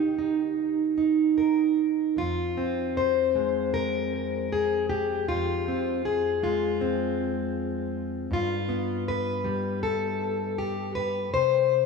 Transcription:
0.00 2.16 D#3 medium
0.00 0.17 D#4 soft
0.00 2.17 G4 medium
0.19 0.96 D#4 soft
0.98 2.12 D#4 soft
1.38 2.12 A#4 soft
2.16 5.28 F2 medium
2.16 2.96 F4 medium
2.57 4.52 C4 soft
2.97 3.73 C5 medium
3.35 5.25 G#3 medium
3.74 5.28 A#4 loud
4.52 4.89 G#4 medium
4.89 5.67 G4 medium
5.28 8.30 F2 medium
5.28 6.42 F4 medium
5.68 6.05 C4 soft
6.05 6.81 G#4 medium
6.43 8.26 G#3 medium
6.43 8.31 F4 medium
6.81 8.31 C4 medium
8.31 11.29 G2 medium
8.31 9.08 F4 medium
8.69 11.29 B3 soft
9.08 9.82 B4 medium
9.44 11.29 G3 medium
9.83 10.58 A4 medium
10.58 10.95 G4 medium
10.95 11.33 B4 loud
11.34 11.86 C3 medium
11.34 11.86 C5 loud

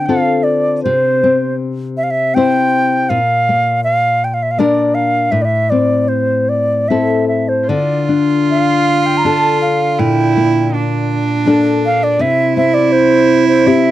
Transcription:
0.00 0.84 D3 medium
0.06 1.23 C4 soft
0.06 0.93 F4 soft
0.06 0.93 A4 medium
0.06 0.45 F5 medium
0.43 0.83 D5 medium
0.83 3.10 C3 medium
0.83 1.56 C5 medium
1.24 2.35 C4 medium
1.97 2.05 E5 medium
2.03 2.12 F5 medium
2.11 2.36 E5 medium
2.34 3.18 C4 medium
2.34 3.19 E4 medium
2.34 3.19 C5 medium
2.34 3.11 G5 loud
3.09 5.31 A#2 medium
3.09 3.83 F5 loud
3.49 4.57 A#3 medium
3.84 4.26 F5 medium
4.24 4.35 G5 medium
4.34 4.44 F5 medium
4.43 4.53 E5 medium
4.51 4.60 F5 medium
4.59 5.40 A#3 medium
4.59 5.40 D4 medium
4.59 5.41 A#4 medium
4.59 4.96 D5 medium
4.95 5.33 F5 medium
5.31 7.69 A2 medium
5.31 5.43 E5 medium
5.42 5.46 D5 medium
5.42 5.71 E5 medium
5.70 6.89 C4 soft
5.70 6.10 D5 medium
6.08 6.51 C5 medium
6.49 6.90 D5 medium
6.88 7.77 C4 soft
6.88 8.12 E4 soft
6.88 9.26 A4 soft
6.88 7.28 E5 medium
7.28 7.50 E5 medium
7.49 7.70 C5 medium
7.67 11.19 D3 medium
7.67 10.00 F4 medium
7.67 8.08 D5 medium
8.09 9.24 D4 soft
8.51 9.08 F5 medium
9.06 9.19 G5 medium
9.17 9.26 A#5 medium
9.25 10.36 D4 soft
9.25 10.40 A4 medium
9.25 9.61 A5 medium
9.62 10.01 F5 medium
9.99 12.20 A#2 medium
9.99 10.75 E4 medium
9.99 10.73 G5 medium
10.37 11.45 A#3 medium
10.74 12.22 D4 medium
11.46 12.27 A#3 medium
11.46 12.28 D4 medium
11.46 12.28 A4 medium
11.86 12.05 F5 medium
12.03 12.23 D5 medium
12.19 13.91 C3 medium
12.19 13.91 E4 loud
12.19 12.56 E5 medium
12.57 13.66 C4 soft
12.57 12.75 E5 medium
12.74 12.94 D5 medium
12.92 13.48 C5 medium
13.48 13.69 C5 medium
13.67 13.91 C4 medium
13.67 13.91 E4 soft
13.67 13.91 G4 medium
13.67 13.91 E5 medium

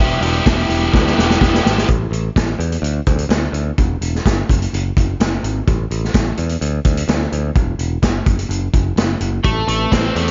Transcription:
0.00 0.17 E1 loud
0.00 0.44 G3 loud
0.00 0.23 B3 loud
0.00 0.22 E4 loud
0.00 1.86 G4 medium
0.00 0.21 G4 loud
0.00 1.86 E5 medium
0.00 1.87 D6 loud
0.21 0.39 E1 loud
0.21 0.45 B3 medium
0.21 0.46 E4 medium
0.21 0.47 G4 medium
0.21 open hi-hat medium
0.45 0.64 E1 medium
0.45 1.40 G3 medium
0.45 1.18 B3 medium
0.45 1.17 E4 loud
0.45 1.15 G4 medium
0.45 kick loud
0.45 snare loud
0.45 open hi-hat medium
0.69 0.88 E1 medium
0.69 open hi-hat medium
0.94 1.12 D2 medium
0.94 kick loud
0.94 snare medium
1.07 snare medium
1.17 1.36 E1 medium
1.17 1.41 B3 medium
1.17 1.41 E4 medium
1.17 1.42 G4 medium
1.17 snare medium
1.30 snare medium
1.41 1.59 E1 loud
1.41 1.87 G3 medium
1.41 1.66 B3 loud
1.41 1.65 E4 loud
1.41 1.63 G4 loud
1.41 kick loud
1.41 snare medium
1.54 snare medium
1.65 1.83 G#1 medium
1.65 1.88 B3 medium
1.65 1.87 E4 medium
1.65 1.87 G4 medium
1.65 snare loud
1.78 snare medium
1.89 2.06 A1 loud
1.89 kick loud
1.89 closed hi-hat medium
2.11 2.28 A1 medium
2.11 closed hi-hat medium
2.36 2.53 A1 medium
2.36 kick medium
2.36 snare loud
2.36 closed hi-hat medium
2.59 2.76 E2 medium
2.59 closed hi-hat medium
2.72 closed hi-hat medium
2.82 2.99 D2 medium
2.82 closed hi-hat medium
3.06 3.24 D2 medium
3.06 kick loud
3.06 closed hi-hat medium
3.18 closed hi-hat medium
3.29 3.47 D2 medium
3.29 snare loud
3.29 closed hi-hat medium
3.52 3.70 D2 medium
3.52 closed hi-hat medium
3.78 3.95 E1 loud
3.78 kick loud
3.78 closed hi-hat medium
4.01 4.18 E1 medium
4.01 closed hi-hat medium
4.15 snare soft
4.25 4.43 G1 medium
4.25 kick medium
4.25 snare loud
4.25 closed hi-hat medium
4.49 4.66 F#1 medium
4.49 kick loud
4.49 closed hi-hat medium
4.62 closed hi-hat medium
4.73 4.90 F#1 medium
4.73 closed hi-hat medium
4.97 5.14 F#1 medium
4.97 kick medium
4.97 closed hi-hat medium
5.20 5.37 F#1 medium
5.20 snare loud
5.20 closed hi-hat medium
5.43 5.60 G#1 medium
5.43 closed hi-hat medium
5.67 5.84 A1 loud
5.67 kick loud
5.67 closed hi-hat medium
5.91 6.08 A1 medium
5.91 closed hi-hat medium
6.04 snare soft
6.14 6.31 A1 medium
6.14 kick medium
6.14 snare loud
6.14 closed hi-hat medium
6.37 6.55 E2 medium
6.37 closed hi-hat medium
6.49 closed hi-hat medium
6.61 6.79 D2 medium
6.61 closed hi-hat medium
6.85 7.02 D2 medium
6.85 kick medium
6.85 closed hi-hat medium
6.97 closed hi-hat medium
7.08 7.25 D2 medium
7.08 snare loud
7.08 closed hi-hat medium
7.32 7.50 D2 medium
7.32 closed hi-hat medium
7.55 7.73 E1 loud
7.55 kick loud
7.55 closed hi-hat medium
7.79 7.96 E1 medium
7.79 closed hi-hat medium
8.02 8.20 G1 medium
8.02 kick medium
8.02 snare loud
8.02 closed hi-hat medium
8.26 8.44 F#1 medium
8.26 kick loud
8.26 closed hi-hat medium
8.39 closed hi-hat medium
8.49 8.67 F#1 medium
8.49 closed hi-hat medium
8.73 8.91 F#1 medium
8.73 kick medium
8.73 closed hi-hat medium
8.96 9.14 F#1 medium
8.96 snare loud
8.96 closed hi-hat medium
9.21 9.38 F#1 medium
9.21 closed hi-hat medium
9.44 9.62 A1 medium
9.44 9.68 A3 medium
9.44 10.31 A3 medium
9.44 10.31 C4 medium
9.44 10.31 B4 loud
9.44 kick loud
9.44 closed hi-hat medium
9.68 9.85 A1 medium
9.68 10.14 A3 medium
9.68 closed hi-hat medium
9.92 10.09 A1 medium
9.92 10.31 C4 medium
9.92 kick medium
9.92 snare loud
9.92 closed hi-hat medium
10.15 10.31 E2 medium
10.15 10.31 A3 medium
10.15 closed hi-hat medium
10.28 closed hi-hat medium

